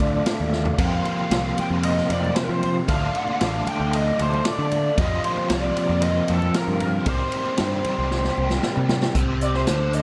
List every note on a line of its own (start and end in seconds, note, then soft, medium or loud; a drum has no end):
0.00 0.20 D2 medium
0.00 0.76 D3 medium
0.00 0.77 A3 medium
0.00 0.78 D4 loud
0.00 0.82 F4 loud
0.00 0.23 D5 medium
0.00 kick medium
0.00 ride medium
0.26 snare loud
0.26 ride medium
0.40 0.70 D#2 medium
0.52 snare medium
0.65 floor tom medium
0.78 0.99 F2 medium
0.78 2.86 F2 medium
0.78 2.87 C3 medium
0.78 2.87 F3 medium
0.78 2.88 A#3 medium
0.78 2.88 C4 medium
0.78 0.86 F5 loud
0.78 kick loud
0.78 crash medium
0.78 ride medium
0.82 2.91 F4 loud
0.82 0.93 G5 medium
0.95 1.58 F5 medium
1.05 ride medium
1.19 high conga medium
1.31 1.51 C2 medium
1.31 snare loud
1.31 ride medium
1.58 1.66 G5 loud
1.58 ride medium
1.58 high conga medium
1.58 low conga medium
1.70 2.01 F2 medium
1.83 2.11 D#5 loud
1.83 ride medium
1.97 snare soft
2.10 2.30 F2 medium
2.10 2.35 D5 medium
2.10 ride medium
2.10 high conga medium
2.25 low conga medium
2.36 2.42 C5 medium
2.36 snare loud
2.36 ride medium
2.42 2.50 A#4 medium
2.49 2.79 F3 medium
2.49 2.74 C5 medium
2.63 ride medium
2.63 high conga medium
2.63 low conga medium
2.88 3.09 D2 medium
2.88 4.96 D3 medium
2.88 4.96 A3 medium
2.88 4.97 D4 loud
2.88 4.97 F4 loud
2.88 3.67 F5 loud
2.88 kick loud
2.88 ride medium
3.15 ride medium
3.28 high conga medium
3.41 3.61 A1 medium
3.41 snare loud
3.41 ride medium
3.67 3.94 G5 loud
3.67 ride medium
3.67 high conga medium
3.67 low conga medium
3.80 4.10 D2 medium
3.93 4.20 D#5 medium
3.93 ride medium
4.19 4.40 D2 medium
4.19 4.47 C5 medium
4.19 ride medium
4.19 high conga medium
4.34 low conga medium
4.45 4.99 D5 medium
4.45 snare loud
4.45 ride medium
4.58 4.89 D3 medium
4.71 ride medium
4.71 high conga medium
4.71 low conga medium
4.98 5.18 F2 medium
4.98 7.05 F2 medium
4.98 7.05 C3 medium
4.98 7.06 F3 medium
4.98 7.07 A#3 medium
4.98 7.09 C4 loud
4.98 5.24 D#5 medium
4.98 kick loud
4.98 ride medium
5.02 7.07 F4 loud
5.24 5.48 C5 medium
5.24 ride medium
5.37 high conga medium
5.49 5.70 C2 medium
5.49 6.03 D5 medium
5.49 snare loud
5.49 ride loud
5.77 ride medium
5.77 high conga medium
5.89 6.20 F2 medium
6.02 6.29 D#5 medium
6.02 ride medium
6.28 6.49 F2 medium
6.28 6.55 A4 medium
6.28 ride medium
6.28 high conga medium
6.42 low conga medium
6.54 6.81 A#4 medium
6.54 snare loud
6.54 ride medium
6.68 6.98 G2 medium
6.80 7.08 A#4 medium
6.80 ride medium
6.80 high conga medium
6.80 low conga medium
7.06 7.27 C2 medium
7.06 9.14 C3 medium
7.06 9.15 D#3 medium
7.06 9.15 G3 loud
7.06 9.15 C4 loud
7.06 9.16 G4 medium
7.06 8.60 C5 medium
7.06 kick loud
7.06 ride medium
7.32 ride medium
7.45 high conga medium
7.58 7.80 G2 medium
7.58 snare loud
7.58 ride medium
7.84 ride medium
7.84 high conga medium
7.84 low conga medium
7.99 8.29 C2 medium
8.11 snare medium
8.24 snare medium
8.37 8.58 C2 medium
8.37 high conga medium
8.50 snare medium
8.50 low conga medium
8.63 snare medium
8.77 9.07 C3 medium
8.77 high conga medium
8.89 snare medium
8.89 high conga medium
8.89 low conga medium
9.02 snare medium
9.15 9.64 C2 medium
9.15 9.67 C3 medium
9.15 9.67 C4 loud
9.15 kick medium
9.15 closed hi-hat medium
9.41 9.55 D5 medium
9.41 closed hi-hat medium
9.54 9.95 C5 medium
9.54 snare soft
9.67 10.02 D2 medium
9.67 10.02 D3 medium
9.67 10.02 D4 medium
9.67 snare loud
9.67 closed hi-hat medium
9.93 10.02 D#5 medium
9.93 closed hi-hat medium